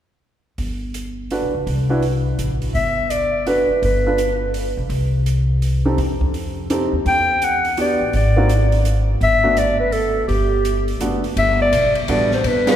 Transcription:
0.58 upright bass G1, kick, open hi-hat
0.94 closed hi-hat
1.31 grand piano D4 F#4 A4 B4, open hi-hat
1.42 upright bass B1
1.54 upright bass C#2
1.67 upright bass C2, kick, open hi-hat
1.90 grand piano D4 E4 F#4 B4
2.02 open hi-hat
2.38 upright bass A1, closed hi-hat
2.62 open hi-hat
2.75 upright bass G1, clarinet E5, kick, open hi-hat
3.10 clarinet D5, closed hi-hat
3.46 grand piano D4 F#4 A4 B4, clarinet B4, open hi-hat
3.69 muted upright bass stroke
3.82 upright bass G1, clarinet B4, kick, open hi-hat
4.06 grand piano D4 F4 A4 B4
4.18 closed hi-hat
4.54 open hi-hat
4.77 upright bass B1
4.89 upright bass C2, kick, open hi-hat
5.26 closed hi-hat
5.62 open hi-hat
5.85 grand piano C4 D#4 G4 A4
5.98 upright bass F2, kick, open hi-hat
6.21 kick
6.34 open hi-hat
6.70 grand piano C4 D#4 G4 A4, closed hi-hat
6.92 upright bass D#2
7.05 upright bass E2, clarinet G5, kick, open hi-hat
7.42 clarinet F#5, closed hi-hat
7.65 open hi-hat
7.77 grand piano B3 D4 F#4 G4, clarinet D5, open hi-hat
8.01 upright bass A1
8.13 upright bass G#1, clarinet D5, kick, open hi-hat
8.36 grand piano A#3 C4 D#4 F#4
8.49 closed hi-hat
8.72 open hi-hat
8.85 closed hi-hat
9.21 upright bass G1, clarinet E5, kick, open hi-hat
9.44 grand piano A3 B3 D4 F#4
9.57 clarinet D5, closed hi-hat
9.80 clarinet B4
9.92 clarinet A4, open hi-hat
10.28 upright bass G1, clarinet G4, kick, open hi-hat
10.65 closed hi-hat
10.88 open hi-hat
11.00 upright bass F#1, grand piano A3 B3 D4 F#4, closed hi-hat
11.24 open hi-hat
11.36 upright bass G1, clarinet E5, kick, ride
11.62 clarinet D5
11.72 upright bass B1, kick, hi-hat pedal, ride
11.95 ride
12.08 upright bass A1, grand piano G3 B3 D4 F#4 A4, clarinet D5, kick, ride
12.31 clarinet C5, snare
12.44 upright bass G1, clarinet B4, kick, ride
12.67 grand piano G3 B3 D4 F4 G#4, clarinet B4, snare, ride

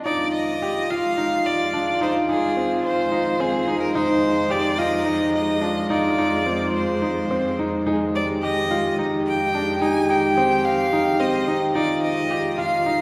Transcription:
0.04 string section F2 D#3 G#3, grand piano D#4, french horn F4, violin D5
0.33 violin D#5
0.62 grand piano G4
0.90 grand piano F4, violin F5
1.18 grand piano D#4
1.46 violin D5
1.74 grand piano D4
2.01 grand piano D#4, violin C5
2.29 grand piano D#4, violin G#4
2.57 grand piano C4
2.86 violin C5
3.12 grand piano D#4
3.40 grand piano C4, violin G#4
3.68 grand piano D#4
3.81 violin A#4
3.95 grand piano D#4, french horn D#4, violin C5
4.50 grand piano G4, violin D5
4.78 french horn D#4, grand piano F4, violin D#5
5.06 grand piano D#4
5.35 violin D#5
5.61 grand piano D4, french horn F4
5.90 grand piano D#4, violin D5
6.18 grand piano D#4
6.46 grand piano C4
6.75 violin C5
7.02 grand piano D#4
7.31 grand piano C4
7.59 grand piano D#4
7.86 string section D#3, grand piano D#4, french horn G#4
8.14 french horn G4, violin D5
8.42 grand piano G4, violin D#5
8.71 grand piano F4
8.99 grand piano D#4
9.27 violin G5
9.55 grand piano D4
9.81 grand piano D#4, violin G#5
10.09 grand piano D#4, violin G5
10.37 grand piano C4
10.65 violin F5
10.93 grand piano D#4
11.19 grand piano C4, violin D#5
11.48 grand piano D#4
11.74 grand piano D#4, french horn F4, violin D5
12.02 violin D#5
12.31 grand piano G4
12.58 grand piano F4, violin F5
12.86 grand piano D#4

